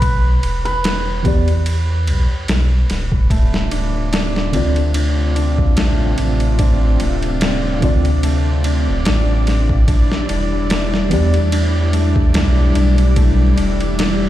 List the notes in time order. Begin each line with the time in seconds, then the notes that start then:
Already playing: B1 B4
0.02 kick, ride
0.43 E1, ride
0.65 B4, ride
0.84 snare, ride
1.23 E2 E3 B3 G4, kick, ride
1.28 D5
1.48 ride
1.66 ride
2.07 B1, ride
2.48 B1, snare, ride
2.90 D1, snare, ride
3.12 kick
3.29 A3 C4 F4 D5, kick, ride
3.54 snare
3.71 D1 D4, ride
4.12 D4, snare, ride
4.36 snare
4.52 D2 D3 A3 C4 F4, ride
4.57 D5
4.76 ride
4.94 D4, ride
5.35 D4, ride
5.58 kick
5.77 A1 A3, snare, ride
6.18 A1 D4, ride
6.40 ride
6.59 D4, kick, ride
7.00 D1 A3, ride
7.23 ride
7.41 D4, snare, ride
7.81 D2 D3 C4 D4 F4, kick, ride
7.85 D5
8.05 ride
8.23 A3, ride
8.64 D4, ride
8.88 D1
9.05 A1 D4, snare, ride
9.46 A3, snare, ride
9.69 kick
9.87 G3 D4 E4, kick, ride
10.12 snare
10.29 E1 D4, ride
10.70 A3, snare, ride
10.94 snare
11.09 E2 E3 B3 D4 G4, ride
11.14 D5
11.34 ride
11.52 D4, ride
11.93 A3, ride
12.16 kick
12.34 B1 D4, snare, ride
12.75 B1 D4, ride
12.98 ride
13.16 A3, kick, ride
13.57 E1 D4, ride
13.81 ride
13.98 D4, snare, ride